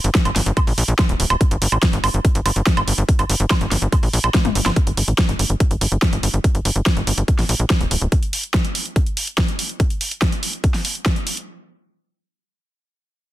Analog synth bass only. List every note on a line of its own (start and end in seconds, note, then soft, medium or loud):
0.04 0.10 G1 medium
0.25 0.31 G1 medium
0.36 0.42 G1 loud
0.46 0.52 G1 medium
0.67 0.73 A#1 medium
0.78 0.84 A#1 loud
0.88 0.94 A#1 medium
1.09 1.15 D1 medium
1.20 1.26 D1 loud
1.30 1.36 D1 medium
1.51 1.57 G1 medium
1.62 1.67 G1 loud
1.72 1.78 A1 medium
1.93 1.99 G1 medium
2.04 2.09 G1 loud
2.14 2.20 G1 medium
2.35 2.41 G1 medium
2.46 2.51 G1 loud
2.56 2.62 G1 medium
2.77 2.83 G1 medium
2.88 2.93 G1 loud
2.98 3.04 G1 medium
3.19 3.25 G1 medium
3.30 3.35 G1 loud
3.40 3.46 G1 medium
3.61 3.67 G1 medium
3.72 3.77 G1 loud
3.82 3.88 G1 medium
4.03 4.09 A#1 medium
4.13 4.19 A#1 loud
4.24 4.30 A#1 loud
4.45 4.51 G1 medium
4.55 4.61 G1 loud
4.66 4.72 G1 loud
4.87 4.93 G1 medium
4.97 5.03 G1 loud
5.08 5.14 A1 medium
5.29 5.35 G1 medium
5.39 5.45 G1 loud
5.50 5.56 G1 medium
5.71 5.77 G1 medium
5.81 5.87 G1 loud
5.92 5.98 G1 medium
6.13 6.19 G1 medium
6.23 6.29 G1 loud
6.34 6.40 G1 loud
6.55 6.60 G1 medium
6.65 6.71 G1 loud
6.76 6.81 G1 medium
6.97 7.02 G1 medium
7.07 7.13 G1 loud
7.18 7.23 G1 medium
7.39 7.44 A#1 medium
7.49 7.55 A#1 loud
7.60 7.65 A#1 medium
7.81 7.86 D1 medium
7.91 7.97 D1 loud
8.02 8.07 D1 medium